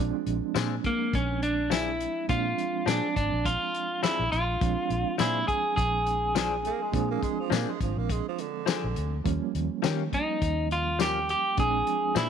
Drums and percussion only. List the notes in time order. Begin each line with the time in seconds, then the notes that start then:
0.26 closed hi-hat
0.56 snare, closed hi-hat, tambourine
0.84 kick, closed hi-hat
1.13 kick, closed hi-hat
1.43 closed hi-hat
1.71 snare, closed hi-hat, tambourine
2.00 closed hi-hat
2.29 kick, closed hi-hat
2.58 closed hi-hat
2.88 snare, closed hi-hat, tambourine
3.16 kick, closed hi-hat
3.45 kick, closed hi-hat
3.75 closed hi-hat
4.03 snare, closed hi-hat, tambourine
4.33 closed hi-hat
4.61 kick, closed hi-hat
4.90 closed hi-hat
5.19 snare, closed hi-hat, tambourine
5.48 kick, closed hi-hat
5.77 kick, closed hi-hat
6.07 closed hi-hat
6.36 snare, closed hi-hat, tambourine
6.65 closed hi-hat
6.93 kick, closed hi-hat
7.23 kick, closed hi-hat
7.52 snare, closed hi-hat, tambourine
7.81 kick, closed hi-hat
8.09 kick, closed hi-hat
8.38 closed hi-hat
8.67 snare, closed hi-hat, tambourine
8.96 closed hi-hat
9.26 kick, closed hi-hat
9.55 closed hi-hat
9.84 snare, closed hi-hat, tambourine
10.13 kick, closed hi-hat
10.42 kick, closed hi-hat
10.71 closed hi-hat
11.00 snare, closed hi-hat, tambourine
11.29 closed hi-hat
11.57 kick, closed hi-hat
11.87 closed hi-hat
12.16 snare, closed hi-hat, tambourine